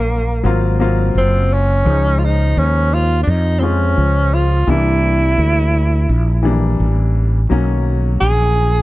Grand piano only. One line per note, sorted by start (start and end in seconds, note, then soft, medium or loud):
0.00 0.27 F#3 medium
0.00 0.24 A#3 medium
0.00 0.25 C#4 medium
0.00 0.25 F4 medium
0.43 0.75 F#3 medium
0.43 0.75 A#3 medium
0.43 0.76 C4 medium
0.43 0.76 F4 medium
0.79 1.73 F#3 medium
0.79 1.73 A#3 medium
0.79 1.74 C4 medium
0.79 1.74 F4 loud
1.85 3.07 F3 medium
1.85 3.07 G#3 medium
1.85 3.08 D#4 medium
1.85 3.07 C5 medium
3.61 4.55 F3 medium
3.61 4.55 G#3 medium
3.61 4.56 F4 medium
3.61 4.56 C5 medium
4.67 5.89 E3 medium
4.67 5.89 G3 medium
4.67 5.90 A#3 medium
4.67 5.90 D4 medium
6.43 7.37 E3 medium
6.43 7.37 G3 medium
6.43 7.38 A#3 medium
6.43 7.38 D4 medium
7.49 8.71 D#3 medium
7.49 8.71 F#3 medium
7.49 8.72 A#3 medium
7.49 8.72 C#4 medium